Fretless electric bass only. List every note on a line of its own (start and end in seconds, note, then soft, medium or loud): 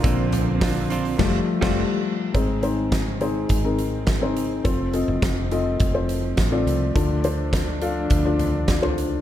0.04 1.15 A#1 loud
1.19 1.39 F1 loud
1.62 1.82 F1 loud
2.34 3.46 G#1 medium
3.50 4.61 G#1 medium
4.65 5.05 F1 medium
5.08 5.21 F1 medium
5.22 5.76 F1 medium
5.80 6.34 F1 medium
6.38 6.65 A1 medium
6.67 6.93 C2 medium
6.96 8.07 D2 medium
8.11 9.21 D2 medium